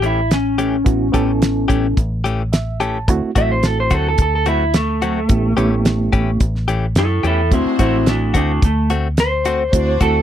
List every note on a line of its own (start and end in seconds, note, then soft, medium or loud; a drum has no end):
0.00 0.82 A1 medium
0.00 0.20 E3 medium
0.00 0.20 A3 medium
0.00 0.20 C#4 medium
0.00 0.20 G4 medium
0.00 closed hi-hat medium
0.06 0.32 E4 medium
0.31 1.95 C#4 medium
0.31 snare loud
0.31 closed hi-hat medium
0.58 0.76 E3 medium
0.58 0.76 A3 medium
0.58 0.76 C#4 medium
0.58 0.75 G4 medium
0.58 closed hi-hat medium
0.85 1.12 A1 medium
0.85 1.07 B3 medium
0.85 1.07 C#4 medium
0.85 1.08 E4 medium
0.85 1.08 F#4 medium
0.85 kick loud
0.85 closed hi-hat medium
1.12 1.66 A1 medium
1.12 1.32 E3 medium
1.12 1.31 A3 medium
1.12 1.99 B3 medium
1.12 2.00 C#4 medium
1.12 1.31 C#4 medium
1.12 2.00 E4 medium
1.12 1.31 G4 medium
1.12 2.00 A4 medium
1.12 kick medium
1.12 closed hi-hat medium
1.42 snare loud
1.42 closed hi-hat medium
1.68 1.95 A1 medium
1.68 1.87 E3 medium
1.68 1.86 A3 medium
1.68 1.86 C#4 medium
1.68 1.86 G4 medium
1.68 kick medium
1.68 closed hi-hat medium
1.97 3.08 A1 medium
1.97 kick loud
1.97 closed hi-hat medium
2.24 2.42 E3 medium
2.24 2.42 A3 medium
2.24 2.42 C#4 medium
2.24 2.41 G4 medium
2.24 closed hi-hat medium
2.53 2.79 E5 medium
2.53 snare loud
2.53 closed hi-hat medium
2.80 2.98 E3 medium
2.80 2.98 A3 medium
2.80 2.98 C#4 medium
2.80 2.97 G4 medium
2.80 3.06 A5 medium
2.80 closed hi-hat medium
3.08 3.21 D2 medium
3.08 3.30 A3 medium
3.08 3.30 C4 medium
3.08 3.30 E4 medium
3.08 3.30 F#4 medium
3.08 kick loud
3.08 closed hi-hat medium
3.22 muted fingered electric bass stroke soft
3.35 3.87 A1 medium
3.35 3.53 F#3 medium
3.35 4.22 A3 medium
3.35 3.53 A3 medium
3.35 3.53 C4 medium
3.35 4.22 C4 medium
3.35 4.22 E4 medium
3.35 3.52 F#4 medium
3.35 4.23 F#4 medium
3.35 3.51 E5 loud
3.35 kick medium
3.35 closed hi-hat medium
3.51 3.65 C5 medium
3.63 3.78 A4 medium
3.63 snare loud
3.63 closed hi-hat medium
3.80 3.95 C5 medium
3.90 4.16 D2 medium
3.90 4.09 F#3 medium
3.90 4.08 A3 medium
3.90 4.08 C4 medium
3.90 4.08 F#4 medium
3.90 kick medium
3.90 closed hi-hat medium
3.95 4.07 A4 medium
4.09 4.20 A4 medium
4.18 5.26 D2 medium
4.18 kick loud
4.18 closed hi-hat medium
4.22 4.34 A4 medium
4.35 4.48 A4 medium
4.46 4.64 F#3 medium
4.46 4.64 A3 medium
4.46 4.63 C4 medium
4.46 4.74 E4 medium
4.46 4.63 F#4 medium
4.46 closed hi-hat medium
4.74 6.37 A3 medium
4.74 snare loud
4.74 closed hi-hat medium
5.02 5.20 F#3 medium
5.02 5.19 A3 medium
5.02 5.19 C4 medium
5.02 5.19 F#4 medium
5.02 closed hi-hat medium
5.29 5.55 A1 medium
5.29 5.51 B3 medium
5.29 5.51 C#4 medium
5.29 5.51 E4 medium
5.29 5.52 G4 medium
5.29 kick loud
5.29 closed hi-hat medium
5.57 6.09 A1 medium
5.57 5.75 E3 medium
5.57 5.75 A3 medium
5.57 6.43 B3 medium
5.57 6.43 C#4 medium
5.57 5.74 C#4 medium
5.57 6.44 E4 medium
5.57 5.74 G4 medium
5.57 6.44 G4 medium
5.57 closed hi-hat medium
5.85 snare loud
5.85 closed hi-hat medium
6.13 6.38 A1 medium
6.13 6.30 E3 medium
6.13 6.30 A3 medium
6.13 6.30 C#4 medium
6.13 6.30 G4 medium
6.13 kick medium
6.13 closed hi-hat medium
6.40 6.95 A1 loud
6.40 kick loud
6.40 closed hi-hat medium
6.55 snare soft
6.68 6.86 E3 medium
6.68 6.86 A3 medium
6.68 6.85 C#4 medium
6.68 6.85 G4 medium
6.68 closed hi-hat medium
6.95 7.21 F#2 medium
6.95 7.25 E4 medium
6.95 7.24 A4 medium
6.95 snare loud
6.95 closed hi-hat medium
7.23 7.52 E2 medium
7.23 7.41 E3 medium
7.23 7.41 A3 medium
7.23 7.41 C#4 medium
7.23 7.51 E4 medium
7.23 7.40 G4 medium
7.23 7.52 A4 medium
7.23 closed hi-hat medium
7.50 7.64 D2 medium
7.50 7.73 A3 medium
7.50 7.73 C4 medium
7.50 7.78 C4 medium
7.50 8.07 D4 medium
7.50 7.73 E4 medium
7.50 7.80 E4 medium
7.50 8.07 F#4 medium
7.50 7.74 F#4 medium
7.50 8.07 C5 medium
7.50 kick loud
7.50 closed hi-hat medium
7.65 muted fingered electric bass stroke soft
7.79 8.31 A1 medium
7.79 8.65 A3 medium
7.79 7.97 A3 medium
7.79 8.65 C4 medium
7.79 7.96 C4 medium
7.79 8.06 C4 medium
7.79 8.65 E4 medium
7.79 8.07 E4 medium
7.79 7.96 F#4 medium
7.79 8.66 F#4 medium
7.79 kick medium
7.79 closed hi-hat medium
8.06 8.34 A3 medium
8.06 8.35 D4 medium
8.06 snare loud
8.06 closed hi-hat medium
8.34 8.60 D2 medium
8.34 8.52 A3 medium
8.34 8.61 A3 medium
8.34 8.51 C4 medium
8.34 8.63 D4 medium
8.34 8.51 F#4 medium
8.34 kick medium
8.34 closed hi-hat medium
8.62 9.69 D2 medium
8.62 8.90 A3 medium
8.62 kick loud
8.62 closed hi-hat medium
8.90 9.08 A3 medium
8.90 9.07 C4 medium
8.90 9.07 F#4 medium
8.90 closed hi-hat medium
9.17 9.99 C5 loud
9.17 snare loud
9.17 closed hi-hat medium
9.44 9.63 A3 medium
9.44 9.63 C4 medium
9.44 9.59 D4 medium
9.44 9.59 F#4 medium
9.44 9.62 F#4 medium
9.44 9.59 C5 medium
9.44 closed hi-hat medium
9.71 9.98 D2 medium
9.71 9.94 A3 medium
9.71 9.95 C4 medium
9.71 10.22 D4 medium
9.71 9.95 E4 medium
9.71 10.22 F#4 medium
9.71 10.22 D5 medium
9.71 kick loud
9.71 closed hi-hat medium
9.75 9.96 F#4 medium
10.00 10.22 D2 medium
10.00 10.22 A3 medium
10.00 10.18 A3 medium
10.00 10.22 C4 medium
10.00 10.18 C4 medium
10.00 10.22 E4 medium
10.00 10.18 F#4 medium
10.00 10.22 F#4 medium
10.00 10.22 A4 medium
10.00 kick medium
10.00 closed hi-hat medium